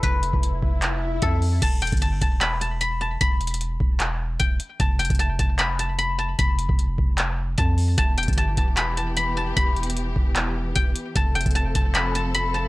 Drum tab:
CC |------------------------------------------------------------------------------------------------|x-----------------------------------------------------------------------------------------------|------------------------------------------------------------------------------------------------|------------------------------------------------------------------------------------------------|
HH |x-----------x-----------x-----------------------x-----------------------x-----------o-----------|x-----------x--x--x--x--x-----------x-----------x-----------x-----------x-----------------------|x-----------x---x---x---x-----------------------x-----------------------x-----------x-----------|x-----------x--x--x--x--x-----------x-----------x-----------x-----------x-----------------------|
CP |------------------------------------------------x-----------------------------------------------|------------------------------------------------x-----------------------------------------------|------------------------------------------------x-----------------------------------------------|------------------------------------------------x-----------------------------------------------|
BD |o-----------------o-----------------o-----------------------------------o-----------------------|o-----------------o-----------------o-----------------------------------------------------------|o-----------------------------------o-----------------------------------o-----------------------|o-----------------o-----------------o-----------------------------------------------------------|

CC |------------------------------------------------------------------------------------------------|------------------------------------------------------------------------------------------------|------------------------------------------------------------------------------------------------|------------------------------------------------------------------------------------------------|
HH |x-----------x-----------x-----------------------x-----------------------x-----------o-----------|x-----------x--x--x--x--x-----------x-----------x-----------x-----------x-----------------------|x-----------x---x---x---x-----------------------x-----------------------x-----------x-----------|x-----------x--x--x--x--x-----------x-----------x-----------x-----------x-----------------------|
CP |------------------------------------------------x-----------------------------------------------|------------------------------------------------x-----------------------------------------------|------------------------------------------------x-----------------------------------------------|------------------------------------------------x-----------------------------------------------|
BD |o-----------------o-----------------o-----------------------------------o-----------------------|o-----------------o-----------------o-----------------------------------------------------------|o-----------------------------------o-----------------------------------o-----------------------|o-----------------o-----------------o-----------------------------------------------------------|